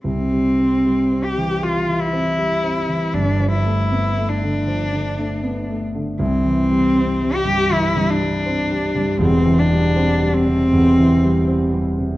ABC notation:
X:1
M:4/4
L:1/8
Q:1/4=79
K:C
V:1 name="Cello"
C3 G F E3 | D E2 D4 z | C3 G E D3 | C D2 C4 z |]
V:2 name="Grand piano" clef=bass
(3[C,,C,] G, C (3G, C E, (3G, E, C (3G, C E, | (3[G,,,G,,] F, A, (3B, A, D, (3F, D, A, (3B, A, D, | (3C,, E, G, (3C G, G,, (3E, G,, G, (3C G, G,, | (3[E,,,E,,] E, G, (3C G, C, (3E,, E, G, (3C G, C, |]